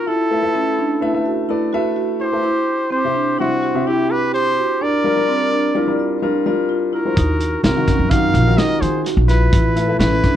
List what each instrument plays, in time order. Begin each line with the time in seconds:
0.07 flugelhorn E4, marimba E4, trumpet A4
0.31 grand piano A3 A4 B4 E5
0.43 grand piano A3 A4 B4 E5
0.55 marimba C#4
0.79 marimba D4
1.01 grand piano A3 A4 B4 E5, marimba E4
1.14 grand piano A3 A4 B4 E5
1.26 marimba F#4
1.49 grand piano A3 A4 B4 D5, marimba E4
1.73 grand piano A3 A4 B4 E5, marimba F#4
1.96 marimba F#4
2.20 marimba E4, flugelhorn G4, trumpet C5
2.33 grand piano A3 A4 B4 E5
2.44 marimba E4
2.91 marimba C4, flugelhorn G4, trumpet C5
3.04 grand piano C3 C4 G4 E5
3.14 marimba D4
3.39 grand piano C3 G3 C4 E5, flugelhorn C4, marimba E4, trumpet F#4
3.63 marimba F#4
3.75 grand piano C3 C4 G4 E5
3.87 marimba E4, flugelhorn E4, trumpet G4
4.10 marimba G4, flugelhorn G4, trumpet B4
4.34 marimba G4, flugelhorn G4, trumpet C5
4.57 marimba F#4
4.81 marimba D4, flugelhorn A#4, trumpet D5
5.04 grand piano G3 D4 F4 A#4
5.17 grand piano G3 D4 F4 A#4
5.28 marimba C4
5.52 marimba D4
5.75 grand piano G3 D4 F4 A#4, marimba E4
5.87 grand piano G3 D4 F4 A#4
5.99 marimba F4
6.22 grand piano G3 D4 F4 A#4, marimba D4
6.46 grand piano G3 D4 F4 A#4, marimba F4
6.69 marimba F4
6.93 marimba E4, flugelhorn F#4, trumpet A#4
7.05 grand piano G3 D4 F4 C5
7.16 upright bass D#2, marimba D#4, kick, closed hi-hat
7.40 closed hi-hat
7.63 upright bass C2, marimba C4, flugelhorn F#4, trumpet A#4, snare, closed hi-hat
7.76 grand piano D#3 D#4 F#4 F5
7.88 marimba C#4, kick, snare, closed hi-hat
7.99 upright bass F#2
8.11 grand piano D#3 D#4 F4 F#4, marimba D#4, flugelhorn A#4, trumpet F5, kick, snare, closed hi-hat
8.34 upright bass A#1, marimba F4, closed hi-hat
8.47 grand piano D#3 D#4 F4 F#4
8.58 marimba D#4, flugelhorn A#4, trumpet D#5, snare, closed hi-hat
8.81 upright bass D#3, marimba F#4, flugelhorn G#4, trumpet C5, closed hi-hat
9.05 marimba F#4, snare, closed hi-hat
9.17 upright bass A#1
9.27 flugelhorn E4, marimba F4, trumpet B4, snare, closed hi-hat
9.52 upright bass A1, marimba E4, kick, closed hi-hat
9.76 grand piano A3 A4 B4 E5, closed hi-hat
9.88 grand piano A3 A4 B4 E5
9.99 upright bass A1, marimba C#4, flugelhorn E4, trumpet B4, snare, closed hi-hat
10.23 marimba D4, kick, snare, closed hi-hat